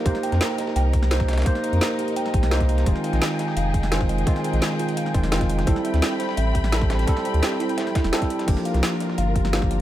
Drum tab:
CC |--------------------------------|--------------------------------|--------------------------------|--------------------------------|
HH |x---x-x-x---x---x---x---x---xxxx|x---x-x-x---x-x-x---x-x-x-x-x-x-|x---x-x-x---x---x---x---x---x-x-|x---x-x-x---x-x-x---x-x-x-x-x-x-|
SD |--o---o-o-o-o-o-------o-o-o-oooo|--o-----o-o-------o---o-o-o---o-|--o---o-o-o-o-o-------o-o-o-----|--o-----o-o-------o---o-o-o---o-|
BD |o-------------------o-----o-----|o-------------------o-----o-----|o-------------------o-----o-----|o-------------------o-----o-----|

CC |--------------------------------|--------------------------------|x-------------------------------|
HH |x---x-x-x---x---x---x---x---x-x-|x---x-x-x---x-x-x---x-x-x-x-x-x-|x---x-x-x---x---x---x---x---x---|
SD |--o---o-o-o-o-o-------o-o-o-o-o-|o-o-----o-o-----o-o-o-o-o-o---o-|--o---o-o-o-o-o-------o-o-o-----|
BD |o-------------------o-----o-----|o-------------------o-----o-----|o-------------------o-----o-----|